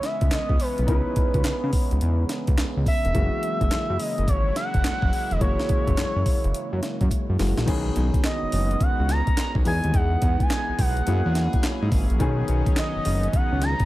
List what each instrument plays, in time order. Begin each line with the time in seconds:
Already playing: analog synth pad C#3 E3 G#3 B3 C#4, grand piano E3 B3 C#4 E4
0.03 analog synth lead E5, snare, closed hi-hat
0.21 analog synth bass C#2, kick, closed hi-hat
0.31 analog synth bass C#2, analog synth lead D#5, snare, clap, closed hi-hat
0.49 analog synth bass C#2, kick
0.60 analog synth lead B4, open hi-hat
0.78 analog synth bass B1, closed hi-hat
0.87 analog synth bass C#2, grand piano B3 C#4 D#4 E4, analog synth lead B4, kick, closed hi-hat
1.16 kick, closed hi-hat
1.34 analog synth bass C#2, kick, closed hi-hat
1.44 analog synth bass C#3, snare, clap, closed hi-hat
1.64 analog synth bass C#3
1.73 kick, open hi-hat
1.91 analog synth bass C#2, closed hi-hat
2.01 analog synth bass E2, closed hi-hat
2.29 snare, closed hi-hat
2.47 analog synth bass C#2, kick, closed hi-hat
2.58 analog synth bass C#2, snare, clap, closed hi-hat
2.77 analog synth bass C#2
2.86 analog synth lead E5, kick, open hi-hat
3.05 analog synth bass E1, closed hi-hat
3.14 analog synth bass F#1, grand piano E3 G#3 A#3 F#4, analog synth pad F#3 G#3 A#3 E4, kick, closed hi-hat
3.43 closed hi-hat
3.61 analog synth bass F#1, kick, closed hi-hat
3.71 analog synth bass F#2, snare, clap, closed hi-hat
3.90 analog synth bass F#2
4.00 analog synth lead D#5, open hi-hat
4.18 analog synth bass F#1, closed hi-hat
4.28 analog synth bass G#1, analog synth lead C#5, kick, closed hi-hat
4.56 analog synth lead F#5, snare, closed hi-hat
4.74 analog synth bass F#1, kick, closed hi-hat
4.84 analog synth bass F#1, snare, clap, closed hi-hat
5.02 analog synth bass F#1, kick
5.13 open hi-hat
5.31 analog synth bass E1, analog synth lead D#5, closed hi-hat
5.40 analog synth bass F#1, grand piano E3 G#3 A#3 F#4, analog synth lead C#5, kick, closed hi-hat
5.59 snare
5.69 kick, closed hi-hat
5.87 analog synth bass F#1, kick, closed hi-hat
5.98 analog synth bass F#2, snare, clap, closed hi-hat
6.16 analog synth bass F#2
6.26 kick, open hi-hat
6.44 analog synth bass F#1, closed hi-hat
6.54 closed hi-hat
6.73 analog synth bass F#2
6.83 snare, closed hi-hat
7.01 analog synth bass F#2, kick, closed hi-hat
7.11 kick, closed hi-hat
7.29 analog synth bass F#2
7.39 analog synth bass F#1, grand piano E3 G#3 A#3 F#4, snare, open hi-hat
7.58 analog synth bass A#1, snare, closed hi-hat
7.66 analog synth bass B1, grand piano D#3 B3 C#4 G#4, analog synth pad D#3 G#3 B3 C#4 F#4, kick, closed hi-hat, crash
7.96 analog synth bass B1, closed hi-hat
8.14 kick, closed hi-hat
8.24 analog synth lead D#5, snare, clap, closed hi-hat
8.43 analog synth bass F#1
8.52 analog synth bass F#1, open hi-hat
8.71 closed hi-hat
8.81 analog synth bass C#2, analog synth lead F#5, kick, closed hi-hat
8.99 analog synth bass C#2
9.09 analog synth lead A#5, snare, closed hi-hat
9.27 kick, closed hi-hat
9.37 analog synth lead A#5, snare, clap, closed hi-hat
9.55 analog synth bass B1, kick
9.64 analog synth bass E2, grand piano E3 B3 D#4 G#4, analog synth pad E3 G#3 B3 D#4 G#4, analog synth lead G#5, open hi-hat
9.84 analog synth bass D#2, closed hi-hat
9.94 analog synth bass E2, analog synth lead F#5, kick, closed hi-hat
10.22 analog synth bass E2, kick, closed hi-hat
10.40 analog synth lead G#5, kick, closed hi-hat
10.50 snare, clap, closed hi-hat
10.69 analog synth bass B1
10.79 analog synth bass B1, analog synth lead F#5, kick, open hi-hat
10.97 closed hi-hat
11.06 analog synth bass F#2, grand piano F#3 A#3 E4 G#4, analog synth pad F#3 A#3 C#4 E4, closed hi-hat
11.26 analog synth bass E2
11.35 snare, closed hi-hat
11.53 kick, closed hi-hat
11.63 snare, clap, closed hi-hat
11.82 analog synth bass G#2
11.92 analog synth bass G#1, kick, open hi-hat
12.10 analog synth bass A#1, closed hi-hat
12.19 analog synth bass B1, grand piano D#3 B3 C#4 G#4, analog synth pad B3 D#4, kick, closed hi-hat
12.48 analog synth bass B1, closed hi-hat
12.66 kick, closed hi-hat
12.76 analog synth lead D#5, snare, clap, closed hi-hat
12.96 analog synth bass F#1
13.05 analog synth bass F#1, open hi-hat
13.23 closed hi-hat
13.33 analog synth bass C#2, analog synth lead F#5, kick, closed hi-hat
13.52 analog synth bass C#2
13.62 analog synth lead A#5, snare, closed hi-hat
13.80 kick, closed hi-hat